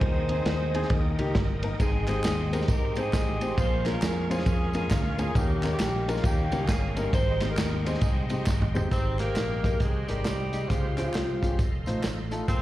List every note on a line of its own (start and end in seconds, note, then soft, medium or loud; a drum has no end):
0.00 0.39 D#2 loud
0.00 0.70 D#3 medium
0.00 1.14 D#4 medium
0.00 1.15 G#4 medium
0.00 1.18 C5 loud
0.00 0.89 C5 medium
0.00 3.54 D#5 medium
0.00 0.89 G#5 medium
0.00 1.77 D#6 medium
0.00 kick loud
0.00 ride medium
0.29 0.41 C4 medium
0.29 0.41 D#4 medium
0.29 0.41 G#4 medium
0.29 ride medium
0.46 0.84 D#2 medium
0.46 snare loud
0.46 ride medium
0.74 0.85 C4 medium
0.74 0.85 D#4 medium
0.74 0.86 G#4 loud
0.74 ride medium
0.82 snare soft
0.90 1.14 D#2 medium
0.90 1.59 D#3 medium
0.90 1.79 A#4 medium
0.90 3.55 G5 medium
0.90 kick loud
0.90 ride medium
1.18 1.33 C#2 medium
1.18 1.30 A#3 medium
1.18 1.30 D#4 medium
1.18 1.30 G4 loud
1.18 ride medium
1.35 1.73 G1 medium
1.35 kick loud
1.35 snare loud
1.35 ride medium
1.63 1.74 A#3 medium
1.63 1.75 D#4 medium
1.63 1.75 A#4 medium
1.63 ride medium
1.79 2.18 G#1 loud
1.79 2.48 G#2 medium
1.79 3.56 G#3 medium
1.79 2.07 C4 medium
1.79 2.07 D#4 medium
1.79 2.06 G#4 loud
1.79 3.56 C6 medium
1.79 kick loud
1.79 ride medium
1.79 tambourine medium
2.07 2.19 G#3 medium
2.07 2.19 C4 medium
2.07 2.93 C4 medium
2.07 2.68 D#4 medium
2.07 2.19 D#4 medium
2.07 2.19 G4 medium
2.07 2.65 G#4 loud
2.07 2.19 C5 medium
2.07 clap medium
2.07 ride medium
2.07 tambourine soft
2.24 2.62 D#2 medium
2.24 snare loud
2.24 clap loud
2.24 ride medium
2.24 tambourine loud
2.52 2.63 G#3 medium
2.52 2.63 C4 medium
2.52 2.64 D#4 medium
2.52 2.64 G4 medium
2.52 2.64 A#4 medium
2.52 ride medium
2.52 tambourine medium
2.61 snare soft
2.68 3.07 G#2 medium
2.68 2.96 D#4 medium
2.68 3.54 G4 medium
2.68 2.97 A#4 loud
2.68 kick loud
2.68 ride medium
2.68 tambourine medium
2.95 3.08 G#3 medium
2.95 3.08 C4 medium
2.95 3.54 C4 medium
2.95 3.54 D#4 medium
2.95 3.08 D#4 medium
2.95 3.08 G4 medium
2.95 3.58 G#4 loud
2.95 3.09 C5 medium
2.95 ride medium
2.95 tambourine medium
3.13 3.51 A1 medium
3.13 kick loud
3.13 snare loud
3.13 clap loud
3.13 ride medium
3.13 tambourine medium
3.41 3.52 G#3 medium
3.41 3.52 C4 medium
3.41 3.53 D#4 medium
3.41 3.53 G4 medium
3.41 3.53 C5 medium
3.41 ride medium
3.41 tambourine medium
3.57 3.96 A#1 loud
3.57 4.26 A#2 medium
3.57 3.86 F4 medium
3.57 4.30 G#4 medium
3.57 7.10 A#4 medium
3.57 3.86 C5 loud
3.57 5.33 F5 medium
3.57 7.10 C#6 medium
3.57 kick loud
3.57 ride medium
3.57 tambourine medium
3.85 3.97 G#3 medium
3.85 3.97 A#3 medium
3.85 3.97 C#4 medium
3.85 4.30 C#4 medium
3.85 3.97 F4 medium
3.85 4.30 F4 medium
3.85 3.97 A#4 medium
3.85 4.28 A#4 loud
3.85 snare soft
3.85 clap medium
3.85 ride medium
3.85 tambourine soft
4.02 4.40 F2 loud
4.02 snare loud
4.02 clap loud
4.02 ride medium
4.02 tambourine loud
4.29 4.41 G#3 medium
4.29 4.41 A#3 medium
4.29 4.41 C#4 medium
4.29 5.16 C#4 medium
4.29 4.42 F4 medium
4.29 4.90 F4 medium
4.29 4.74 G#4 loud
4.29 4.42 C5 medium
4.29 ride medium
4.29 tambourine medium
4.39 snare soft
4.46 4.84 F2 loud
4.46 kick loud
4.46 ride medium
4.46 tambourine medium
4.73 4.86 G#3 medium
4.73 4.86 A#3 medium
4.73 4.86 C#4 medium
4.73 4.86 F4 medium
4.73 4.91 G#4 loud
4.73 4.86 A#4 medium
4.73 ride medium
4.73 tambourine medium
4.91 5.29 D2 medium
4.91 5.19 F4 loud
4.91 kick loud
4.91 snare loud
4.91 clap loud
4.91 ride medium
4.91 tambourine loud
5.18 5.30 G#3 medium
5.18 5.30 A#3 medium
5.18 5.30 C#4 medium
5.18 5.30 F4 medium
5.18 5.36 G#4 medium
5.18 5.30 A#4 medium
5.18 ride medium
5.18 tambourine medium
5.35 5.73 D#2 loud
5.35 6.04 D#3 medium
5.35 5.71 A#3 medium
5.35 5.71 C#4 medium
5.35 5.72 G4 medium
5.35 8.88 D#5 medium
5.35 kick loud
5.35 ride medium
5.35 tambourine medium
5.63 5.75 G#3 medium
5.63 5.75 A#3 medium
5.63 5.75 C#4 medium
5.63 5.75 D#4 medium
5.63 5.75 A#4 medium
5.63 snare soft
5.63 clap medium
5.63 ride medium
5.63 tambourine medium
5.72 6.21 A#3 medium
5.72 6.21 C#4 medium
5.72 6.06 G4 medium
5.79 6.18 A#1 medium
5.79 snare loud
5.79 clap loud
5.79 ride medium
5.79 tambourine loud
6.08 6.19 G#3 medium
6.08 6.19 A#3 medium
6.08 6.19 C#4 medium
6.08 6.20 D#4 medium
6.08 6.25 F4 medium
6.08 6.20 A#4 medium
6.08 ride medium
6.08 tambourine medium
6.16 snare soft
6.24 6.48 D#2 loud
6.24 6.93 D#3 medium
6.24 7.09 A#3 medium
6.24 6.60 C#4 medium
6.24 6.61 G4 loud
6.24 7.12 G5 medium
6.24 kick loud
6.24 ride medium
6.24 tambourine medium
6.52 6.66 C#2 medium
6.52 6.63 G3 medium
6.52 6.63 A#3 medium
6.52 6.64 C#4 medium
6.52 6.64 D#4 medium
6.52 6.64 A#4 medium
6.52 ride medium
6.52 tambourine medium
6.61 7.10 C#4 medium
6.61 6.97 G#4 medium
6.69 7.07 G1 medium
6.69 kick medium
6.69 snare loud
6.69 clap medium
6.69 ride medium
6.69 tambourine loud
6.96 7.08 G3 medium
6.96 7.08 A#3 medium
6.96 7.08 C#4 medium
6.96 7.08 D#4 medium
6.96 7.08 A#4 medium
6.96 7.15 A#4 medium
6.96 ride medium
6.96 tambourine medium
7.13 7.51 G#1 loud
7.13 7.82 G#2 medium
7.13 8.90 G#3 medium
7.13 7.49 D#4 medium
7.13 7.49 G4 medium
7.13 7.48 C5 loud
7.13 8.90 G5 medium
7.13 8.90 C6 medium
7.13 kick loud
7.13 ride medium
7.13 tambourine medium
7.41 7.53 G#3 medium
7.41 7.53 C4 medium
7.41 7.53 D#4 medium
7.41 7.53 G4 medium
7.41 7.53 C5 medium
7.41 snare soft
7.41 clap medium
7.41 ride medium
7.41 tambourine medium
7.50 7.85 D#4 medium
7.50 8.35 G4 medium
7.50 7.84 A#4 medium
7.57 7.96 D#2 medium
7.57 snare loud
7.57 clap loud
7.57 ride medium
7.57 tambourine loud
7.85 7.97 G#3 medium
7.85 7.97 C4 medium
7.85 8.72 C4 medium
7.85 7.97 D#4 medium
7.85 8.71 D#4 medium
7.85 7.97 G4 medium
7.85 8.31 G#4 medium
7.85 7.98 C5 medium
7.85 ride medium
7.85 tambourine medium
7.94 snare soft
8.01 8.40 C2 medium
8.01 kick loud
8.01 ride medium
8.01 tambourine medium
8.29 8.41 G#3 medium
8.29 8.42 C4 medium
8.29 8.42 D#4 medium
8.29 8.42 G4 medium
8.29 8.42 D#5 medium
8.29 ride medium
8.29 tambourine medium
8.46 8.85 G#1 loud
8.46 kick medium
8.46 snare medium
8.46 clap loud
8.46 tambourine loud
8.62 mid tom medium
8.74 8.86 G#3 medium
8.74 8.86 C4 medium
8.74 8.86 D#4 medium
8.74 8.86 G4 medium
8.74 8.86 C5 medium
8.74 floor tom loud
8.74 tambourine medium
8.91 9.30 G#1 medium
8.91 9.60 G#2 medium
8.91 9.18 C4 loud
8.91 9.19 D#4 medium
8.91 11.57 G4 medium
8.91 9.18 G4 medium
8.91 9.18 C5 medium
8.91 10.68 D#5 medium
8.91 10.68 G5 medium
8.91 10.69 C6 medium
8.91 kick loud
8.91 closed hi-hat medium
8.91 tambourine medium
9.19 9.31 G#3 medium
9.19 9.82 A#3 loud
9.19 9.31 D#4 medium
9.19 9.81 D#4 medium
9.19 10.05 G4 medium
9.19 9.31 G4 medium
9.19 9.81 A#4 medium
9.19 9.31 C5 medium
9.19 snare soft
9.19 clap medium
9.19 closed hi-hat medium
9.19 tambourine soft
9.36 9.74 A#1 medium
9.36 snare loud
9.36 clap medium
9.36 closed hi-hat medium
9.36 tambourine medium
9.64 9.75 G#3 medium
9.64 9.75 D#4 medium
9.64 9.76 G4 medium
9.64 9.76 A#4 medium
9.64 kick medium
9.64 closed hi-hat medium
9.64 tambourine medium
9.80 10.04 C2 medium
9.80 10.10 G#3 medium
9.80 10.09 C4 medium
9.80 10.09 D#4 medium
9.80 10.09 G#4 medium
9.80 kick loud
9.80 closed hi-hat medium
9.80 tambourine medium
10.08 10.23 G#1 medium
10.08 10.71 G3 medium
10.08 10.20 G#3 medium
10.08 10.67 C4 medium
10.08 10.20 D#4 medium
10.08 10.67 D#4 medium
10.08 10.70 G4 medium
10.08 10.20 G4 medium
10.08 10.20 A#4 medium
10.08 closed hi-hat medium
10.08 tambourine soft
10.25 10.64 C2 medium
10.25 snare medium
10.25 clap medium
10.25 closed hi-hat medium
10.25 tambourine medium
10.52 10.64 G#3 medium
10.52 10.65 D#4 medium
10.52 10.65 G4 medium
10.52 10.65 D#5 medium
10.52 closed hi-hat medium
10.52 tambourine medium
10.68 11.08 C#2 loud
10.68 11.39 C#3 medium
10.68 10.96 F3 medium
10.68 10.97 G#3 medium
10.68 10.96 C4 medium
10.68 10.95 F4 medium
10.68 11.59 C5 medium
10.68 11.58 F5 medium
10.68 12.47 C6 medium
10.68 kick loud
10.68 closed hi-hat medium
10.68 tambourine medium
10.97 11.55 F3 medium
10.97 11.09 G#3 medium
10.97 11.55 G#3 soft
10.97 11.55 C4 soft
10.97 11.09 C#4 medium
10.97 11.55 F4 medium
10.97 11.09 F4 medium
10.97 11.10 C5 medium
10.97 clap medium
10.97 closed hi-hat medium
10.97 tambourine soft
11.14 11.39 C2 medium
11.14 snare loud
11.14 clap medium
11.14 closed hi-hat medium
11.14 tambourine medium
11.42 11.57 G#1 medium
11.42 11.54 G#3 medium
11.42 11.54 C#4 medium
11.42 11.54 F4 medium
11.42 11.54 G4 medium
11.42 kick medium
11.42 closed hi-hat medium
11.42 tambourine medium
11.59 11.83 F1 medium
11.59 12.47 A4 medium
11.59 12.48 D#5 medium
11.59 12.47 F5 medium
11.59 kick loud
11.59 closed hi-hat medium
11.59 tambourine medium
11.86 12.01 A1 medium
11.86 11.98 A3 medium
11.86 11.98 D#4 medium
11.86 11.99 F4 medium
11.86 11.99 C5 medium
11.86 closed hi-hat medium
11.86 tambourine medium
12.03 12.42 A1 medium
12.03 snare medium
12.03 clap medium
12.03 closed hi-hat medium
12.03 tambourine medium
12.31 12.43 A3 medium
12.31 12.43 D#4 medium
12.31 12.43 F4 medium
12.31 12.43 A4 medium
12.31 closed hi-hat medium
12.31 tambourine medium
12.48 12.62 A#1 loud
12.48 12.62 A#2 medium
12.48 12.62 C4 loud
12.48 12.62 F4 medium
12.48 12.62 G#4 medium
12.48 12.62 A#4 medium
12.48 12.62 C5 loud
12.48 12.62 F5 medium
12.48 12.62 G#5 medium
12.48 12.62 C#6 medium
12.48 kick loud
12.48 closed hi-hat medium
12.48 tambourine medium